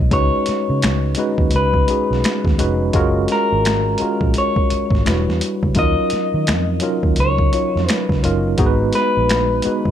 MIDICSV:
0, 0, Header, 1, 6, 480
1, 0, Start_track
1, 0, Tempo, 705882
1, 76, Time_signature, 4, 2, 24, 8
1, 6739, End_track
2, 0, Start_track
2, 0, Title_t, "Clean electric guitar"
2, 0, Program_c, 0, 27
2, 0, Note_on_c, 0, 75, 98
2, 88, Note_off_c, 0, 75, 0
2, 90, Note_on_c, 0, 73, 84
2, 1057, Note_off_c, 0, 73, 0
2, 1060, Note_on_c, 0, 71, 71
2, 1741, Note_off_c, 0, 71, 0
2, 2258, Note_on_c, 0, 70, 96
2, 2978, Note_off_c, 0, 70, 0
2, 2980, Note_on_c, 0, 73, 85
2, 3901, Note_off_c, 0, 73, 0
2, 3935, Note_on_c, 0, 75, 103
2, 4859, Note_off_c, 0, 75, 0
2, 4898, Note_on_c, 0, 73, 80
2, 5374, Note_off_c, 0, 73, 0
2, 5374, Note_on_c, 0, 71, 80
2, 5580, Note_off_c, 0, 71, 0
2, 6087, Note_on_c, 0, 71, 92
2, 6739, Note_off_c, 0, 71, 0
2, 6739, End_track
3, 0, Start_track
3, 0, Title_t, "Tine electric piano"
3, 0, Program_c, 1, 4
3, 0, Control_c, 1, 64, 127
3, 0, Note_on_c, 1, 56, 67
3, 0, Note_on_c, 1, 59, 66
3, 0, Note_on_c, 1, 63, 66
3, 0, Note_on_c, 1, 66, 65
3, 0, Note_on_c, 1, 73, 83
3, 75, Note_off_c, 1, 56, 0
3, 75, Note_on_c, 1, 56, 87
3, 78, Note_on_c, 1, 61, 86
3, 82, Note_off_c, 1, 63, 0
3, 82, Note_on_c, 1, 63, 89
3, 85, Control_c, 1, 64, 0
3, 86, Note_off_c, 1, 66, 0
3, 86, Note_on_c, 1, 66, 84
3, 88, Note_off_c, 1, 73, 0
3, 88, Note_on_c, 1, 71, 96
3, 90, Note_off_c, 1, 59, 0
3, 193, Control_c, 1, 64, 127
3, 640, Note_off_c, 1, 56, 0
3, 642, Note_off_c, 1, 61, 0
3, 644, Note_off_c, 1, 63, 0
3, 646, Note_off_c, 1, 66, 0
3, 647, Note_off_c, 1, 71, 0
3, 795, Note_on_c, 1, 56, 87
3, 799, Note_on_c, 1, 61, 80
3, 803, Note_on_c, 1, 63, 73
3, 804, Note_on_c, 1, 66, 78
3, 809, Note_on_c, 1, 71, 88
3, 1186, Note_off_c, 1, 56, 0
3, 1188, Note_off_c, 1, 61, 0
3, 1190, Note_off_c, 1, 63, 0
3, 1191, Note_off_c, 1, 66, 0
3, 1194, Note_off_c, 1, 71, 0
3, 1277, Note_on_c, 1, 56, 67
3, 1281, Note_on_c, 1, 61, 62
3, 1287, Note_on_c, 1, 63, 65
3, 1290, Note_on_c, 1, 66, 66
3, 1294, Note_on_c, 1, 68, 76
3, 1667, Note_off_c, 1, 56, 0
3, 1669, Note_off_c, 1, 61, 0
3, 1672, Note_off_c, 1, 63, 0
3, 1674, Note_off_c, 1, 66, 0
3, 1676, Note_off_c, 1, 68, 0
3, 1756, Note_on_c, 1, 56, 83
3, 1760, Note_on_c, 1, 61, 82
3, 1764, Note_on_c, 1, 63, 83
3, 1766, Note_on_c, 1, 66, 85
3, 1769, Note_on_c, 1, 71, 94
3, 1952, Note_off_c, 1, 56, 0
3, 1954, Note_off_c, 1, 61, 0
3, 1955, Note_off_c, 1, 63, 0
3, 1957, Note_off_c, 1, 66, 0
3, 1958, Note_off_c, 1, 71, 0
3, 1996, Note_on_c, 1, 56, 110
3, 2000, Note_on_c, 1, 61, 95
3, 2003, Note_on_c, 1, 65, 92
3, 2005, Control_c, 1, 64, 0
3, 2006, Note_on_c, 1, 66, 105
3, 2012, Note_on_c, 1, 70, 121
3, 2138, Control_c, 1, 64, 127
3, 2561, Note_off_c, 1, 56, 0
3, 2563, Note_off_c, 1, 61, 0
3, 2564, Note_off_c, 1, 65, 0
3, 2566, Note_off_c, 1, 66, 0
3, 2569, Note_off_c, 1, 70, 0
3, 2719, Note_on_c, 1, 56, 76
3, 2722, Note_on_c, 1, 61, 68
3, 2727, Note_on_c, 1, 65, 66
3, 2729, Note_on_c, 1, 66, 60
3, 2733, Note_on_c, 1, 70, 76
3, 3438, Note_off_c, 1, 56, 0
3, 3439, Note_off_c, 1, 61, 0
3, 3439, Note_on_c, 1, 55, 77
3, 3440, Note_on_c, 1, 62, 71
3, 3441, Note_off_c, 1, 66, 0
3, 3442, Note_off_c, 1, 65, 0
3, 3444, Note_off_c, 1, 70, 0
3, 3444, Note_on_c, 1, 64, 73
3, 3446, Control_c, 1, 64, 0
3, 3449, Note_on_c, 1, 66, 71
3, 3453, Note_on_c, 1, 71, 87
3, 3553, Control_c, 1, 64, 127
3, 3842, Note_off_c, 1, 55, 0
3, 3842, Note_off_c, 1, 62, 0
3, 3845, Note_off_c, 1, 64, 0
3, 3847, Note_off_c, 1, 66, 0
3, 3849, Note_off_c, 1, 71, 0
3, 3913, Note_on_c, 1, 54, 93
3, 3918, Note_on_c, 1, 61, 77
3, 3918, Note_on_c, 1, 63, 78
3, 3923, Note_on_c, 1, 65, 83
3, 3925, Control_c, 1, 64, 0
3, 3927, Note_on_c, 1, 70, 98
3, 4025, Control_c, 1, 64, 127
3, 4479, Note_off_c, 1, 54, 0
3, 4482, Note_off_c, 1, 61, 0
3, 4482, Note_off_c, 1, 63, 0
3, 4485, Note_off_c, 1, 65, 0
3, 4486, Note_off_c, 1, 70, 0
3, 4632, Note_on_c, 1, 54, 85
3, 4637, Note_on_c, 1, 61, 81
3, 4641, Note_on_c, 1, 63, 70
3, 4643, Note_on_c, 1, 65, 74
3, 4646, Note_on_c, 1, 70, 93
3, 5025, Note_off_c, 1, 54, 0
3, 5027, Note_off_c, 1, 61, 0
3, 5029, Note_off_c, 1, 63, 0
3, 5030, Note_off_c, 1, 65, 0
3, 5032, Note_off_c, 1, 70, 0
3, 5112, Note_on_c, 1, 54, 67
3, 5115, Note_on_c, 1, 61, 60
3, 5119, Note_on_c, 1, 63, 61
3, 5123, Note_on_c, 1, 65, 58
3, 5129, Note_on_c, 1, 73, 73
3, 5505, Note_off_c, 1, 54, 0
3, 5506, Note_off_c, 1, 61, 0
3, 5508, Note_off_c, 1, 63, 0
3, 5510, Note_off_c, 1, 65, 0
3, 5513, Note_off_c, 1, 73, 0
3, 5595, Note_on_c, 1, 54, 89
3, 5601, Note_on_c, 1, 61, 85
3, 5602, Note_on_c, 1, 63, 84
3, 5608, Note_on_c, 1, 65, 82
3, 5611, Note_on_c, 1, 70, 99
3, 5791, Note_off_c, 1, 54, 0
3, 5794, Note_off_c, 1, 61, 0
3, 5794, Note_off_c, 1, 63, 0
3, 5797, Note_off_c, 1, 65, 0
3, 5799, Note_off_c, 1, 70, 0
3, 5832, Note_on_c, 1, 56, 115
3, 5836, Note_on_c, 1, 59, 98
3, 5840, Note_on_c, 1, 63, 94
3, 5843, Note_on_c, 1, 66, 99
3, 5845, Control_c, 1, 64, 0
3, 5846, Note_on_c, 1, 68, 98
3, 5891, Note_on_c, 1, 71, 119
3, 5895, Note_off_c, 1, 68, 0
3, 5965, Control_c, 1, 64, 127
3, 6399, Note_off_c, 1, 56, 0
3, 6401, Note_off_c, 1, 59, 0
3, 6403, Note_off_c, 1, 63, 0
3, 6404, Note_off_c, 1, 66, 0
3, 6428, Note_off_c, 1, 71, 0
3, 6561, Note_on_c, 1, 56, 77
3, 6563, Note_on_c, 1, 59, 60
3, 6566, Note_on_c, 1, 63, 65
3, 6569, Note_on_c, 1, 66, 63
3, 6576, Note_on_c, 1, 71, 81
3, 6739, Note_off_c, 1, 56, 0
3, 6739, Note_off_c, 1, 59, 0
3, 6739, Note_off_c, 1, 63, 0
3, 6739, Note_off_c, 1, 66, 0
3, 6739, Note_off_c, 1, 71, 0
3, 6739, End_track
4, 0, Start_track
4, 0, Title_t, "Fingered electric bass"
4, 0, Program_c, 2, 33
4, 0, Note_on_c, 2, 35, 90
4, 83, Note_off_c, 2, 35, 0
4, 83, Note_on_c, 2, 37, 89
4, 208, Note_off_c, 2, 37, 0
4, 473, Note_on_c, 2, 49, 91
4, 567, Note_on_c, 2, 37, 93
4, 578, Note_off_c, 2, 49, 0
4, 775, Note_off_c, 2, 37, 0
4, 946, Note_on_c, 2, 39, 90
4, 1028, Note_off_c, 2, 39, 0
4, 1044, Note_on_c, 2, 37, 101
4, 1253, Note_off_c, 2, 37, 0
4, 1432, Note_on_c, 2, 35, 83
4, 1511, Note_off_c, 2, 35, 0
4, 1669, Note_on_c, 2, 39, 96
4, 1750, Note_off_c, 2, 39, 0
4, 1768, Note_on_c, 2, 29, 88
4, 1975, Note_off_c, 2, 29, 0
4, 2005, Note_on_c, 2, 30, 96
4, 2213, Note_off_c, 2, 30, 0
4, 2395, Note_on_c, 2, 32, 98
4, 2685, Note_off_c, 2, 32, 0
4, 2868, Note_on_c, 2, 34, 82
4, 2949, Note_off_c, 2, 34, 0
4, 3343, Note_on_c, 2, 32, 91
4, 3426, Note_off_c, 2, 32, 0
4, 3450, Note_on_c, 2, 28, 101
4, 3572, Note_off_c, 2, 28, 0
4, 3594, Note_on_c, 2, 40, 82
4, 3672, Note_off_c, 2, 40, 0
4, 3833, Note_on_c, 2, 37, 84
4, 3912, Note_off_c, 2, 37, 0
4, 3924, Note_on_c, 2, 39, 93
4, 4049, Note_off_c, 2, 39, 0
4, 4311, Note_on_c, 2, 51, 89
4, 4409, Note_on_c, 2, 41, 91
4, 4419, Note_off_c, 2, 51, 0
4, 4615, Note_off_c, 2, 41, 0
4, 4787, Note_on_c, 2, 39, 85
4, 4868, Note_off_c, 2, 39, 0
4, 4886, Note_on_c, 2, 37, 113
4, 5094, Note_off_c, 2, 37, 0
4, 5274, Note_on_c, 2, 41, 87
4, 5352, Note_off_c, 2, 41, 0
4, 5510, Note_on_c, 2, 37, 90
4, 5590, Note_off_c, 2, 37, 0
4, 5604, Note_on_c, 2, 30, 84
4, 5813, Note_off_c, 2, 30, 0
4, 5843, Note_on_c, 2, 32, 94
4, 6052, Note_off_c, 2, 32, 0
4, 6235, Note_on_c, 2, 34, 89
4, 6525, Note_off_c, 2, 34, 0
4, 6706, Note_on_c, 2, 35, 85
4, 6739, Note_off_c, 2, 35, 0
4, 6739, End_track
5, 0, Start_track
5, 0, Title_t, "Muted fingered electric bass strokes"
5, 329, Note_on_c, 9, 29, 42
5, 397, Note_off_c, 9, 29, 0
5, 2731, Note_on_c, 9, 29, 45
5, 2799, Note_off_c, 9, 29, 0
5, 3212, Note_on_c, 9, 29, 48
5, 3280, Note_off_c, 9, 29, 0
5, 4166, Note_on_c, 9, 29, 45
5, 4234, Note_off_c, 9, 29, 0
5, 6571, Note_on_c, 9, 29, 47
5, 6639, Note_off_c, 9, 29, 0
5, 6739, End_track
6, 0, Start_track
6, 0, Title_t, "Drums"
6, 77, Note_on_c, 9, 36, 114
6, 77, Note_on_c, 9, 42, 69
6, 145, Note_off_c, 9, 36, 0
6, 145, Note_off_c, 9, 42, 0
6, 311, Note_on_c, 9, 42, 61
6, 335, Note_on_c, 9, 38, 28
6, 379, Note_off_c, 9, 42, 0
6, 403, Note_off_c, 9, 38, 0
6, 560, Note_on_c, 9, 42, 82
6, 568, Note_on_c, 9, 26, 97
6, 571, Note_on_c, 9, 38, 115
6, 628, Note_off_c, 9, 42, 0
6, 636, Note_off_c, 9, 26, 0
6, 639, Note_off_c, 9, 38, 0
6, 780, Note_on_c, 9, 42, 67
6, 848, Note_off_c, 9, 42, 0
6, 939, Note_on_c, 9, 36, 81
6, 1007, Note_off_c, 9, 36, 0
6, 1024, Note_on_c, 9, 42, 69
6, 1092, Note_off_c, 9, 42, 0
6, 1181, Note_on_c, 9, 36, 92
6, 1249, Note_off_c, 9, 36, 0
6, 1278, Note_on_c, 9, 42, 63
6, 1346, Note_off_c, 9, 42, 0
6, 1448, Note_on_c, 9, 38, 32
6, 1516, Note_off_c, 9, 38, 0
6, 1524, Note_on_c, 9, 42, 76
6, 1531, Note_on_c, 9, 26, 90
6, 1535, Note_on_c, 9, 38, 105
6, 1592, Note_off_c, 9, 42, 0
6, 1599, Note_off_c, 9, 26, 0
6, 1603, Note_off_c, 9, 38, 0
6, 1664, Note_on_c, 9, 36, 98
6, 1684, Note_on_c, 9, 38, 40
6, 1732, Note_off_c, 9, 36, 0
6, 1752, Note_off_c, 9, 38, 0
6, 1761, Note_on_c, 9, 42, 79
6, 1829, Note_off_c, 9, 42, 0
6, 1995, Note_on_c, 9, 42, 70
6, 1998, Note_on_c, 9, 36, 106
6, 2063, Note_off_c, 9, 42, 0
6, 2066, Note_off_c, 9, 36, 0
6, 2231, Note_on_c, 9, 42, 53
6, 2254, Note_on_c, 9, 38, 30
6, 2299, Note_off_c, 9, 42, 0
6, 2322, Note_off_c, 9, 38, 0
6, 2483, Note_on_c, 9, 42, 79
6, 2491, Note_on_c, 9, 26, 92
6, 2494, Note_on_c, 9, 38, 108
6, 2551, Note_off_c, 9, 42, 0
6, 2559, Note_off_c, 9, 26, 0
6, 2562, Note_off_c, 9, 38, 0
6, 2705, Note_on_c, 9, 42, 60
6, 2773, Note_off_c, 9, 42, 0
6, 2861, Note_on_c, 9, 36, 82
6, 2929, Note_off_c, 9, 36, 0
6, 2950, Note_on_c, 9, 42, 70
6, 3018, Note_off_c, 9, 42, 0
6, 3102, Note_on_c, 9, 36, 99
6, 3170, Note_off_c, 9, 36, 0
6, 3199, Note_on_c, 9, 42, 66
6, 3267, Note_off_c, 9, 42, 0
6, 3335, Note_on_c, 9, 36, 94
6, 3365, Note_on_c, 9, 38, 29
6, 3403, Note_off_c, 9, 36, 0
6, 3433, Note_off_c, 9, 38, 0
6, 3442, Note_on_c, 9, 42, 88
6, 3449, Note_on_c, 9, 26, 88
6, 3453, Note_on_c, 9, 38, 118
6, 3510, Note_off_c, 9, 42, 0
6, 3517, Note_off_c, 9, 26, 0
6, 3521, Note_off_c, 9, 38, 0
6, 3603, Note_on_c, 9, 38, 40
6, 3671, Note_off_c, 9, 38, 0
6, 3680, Note_on_c, 9, 42, 81
6, 3748, Note_off_c, 9, 42, 0
6, 3827, Note_on_c, 9, 36, 95
6, 3895, Note_off_c, 9, 36, 0
6, 3908, Note_on_c, 9, 42, 76
6, 3916, Note_on_c, 9, 36, 108
6, 3976, Note_off_c, 9, 42, 0
6, 3984, Note_off_c, 9, 36, 0
6, 4147, Note_on_c, 9, 42, 56
6, 4171, Note_on_c, 9, 38, 29
6, 4215, Note_off_c, 9, 42, 0
6, 4239, Note_off_c, 9, 38, 0
6, 4400, Note_on_c, 9, 42, 79
6, 4408, Note_on_c, 9, 26, 91
6, 4411, Note_on_c, 9, 38, 113
6, 4468, Note_off_c, 9, 42, 0
6, 4476, Note_off_c, 9, 26, 0
6, 4479, Note_off_c, 9, 38, 0
6, 4623, Note_on_c, 9, 42, 65
6, 4691, Note_off_c, 9, 42, 0
6, 4781, Note_on_c, 9, 36, 88
6, 4849, Note_off_c, 9, 36, 0
6, 4869, Note_on_c, 9, 42, 70
6, 4937, Note_off_c, 9, 42, 0
6, 5021, Note_on_c, 9, 36, 89
6, 5089, Note_off_c, 9, 36, 0
6, 5119, Note_on_c, 9, 42, 60
6, 5187, Note_off_c, 9, 42, 0
6, 5286, Note_on_c, 9, 38, 32
6, 5354, Note_off_c, 9, 38, 0
6, 5362, Note_on_c, 9, 42, 84
6, 5370, Note_on_c, 9, 26, 91
6, 5373, Note_on_c, 9, 38, 107
6, 5430, Note_off_c, 9, 42, 0
6, 5438, Note_off_c, 9, 26, 0
6, 5441, Note_off_c, 9, 38, 0
6, 5503, Note_on_c, 9, 36, 102
6, 5523, Note_on_c, 9, 38, 38
6, 5571, Note_off_c, 9, 36, 0
6, 5591, Note_off_c, 9, 38, 0
6, 5601, Note_on_c, 9, 42, 75
6, 5669, Note_off_c, 9, 42, 0
6, 5832, Note_on_c, 9, 42, 66
6, 5837, Note_on_c, 9, 36, 125
6, 5900, Note_off_c, 9, 42, 0
6, 5905, Note_off_c, 9, 36, 0
6, 6069, Note_on_c, 9, 42, 59
6, 6093, Note_on_c, 9, 38, 29
6, 6137, Note_off_c, 9, 42, 0
6, 6161, Note_off_c, 9, 38, 0
6, 6320, Note_on_c, 9, 42, 76
6, 6328, Note_on_c, 9, 26, 98
6, 6331, Note_on_c, 9, 38, 109
6, 6388, Note_off_c, 9, 42, 0
6, 6396, Note_off_c, 9, 26, 0
6, 6399, Note_off_c, 9, 38, 0
6, 6544, Note_on_c, 9, 42, 62
6, 6612, Note_off_c, 9, 42, 0
6, 6701, Note_on_c, 9, 36, 86
6, 6739, Note_off_c, 9, 36, 0
6, 6739, End_track
0, 0, End_of_file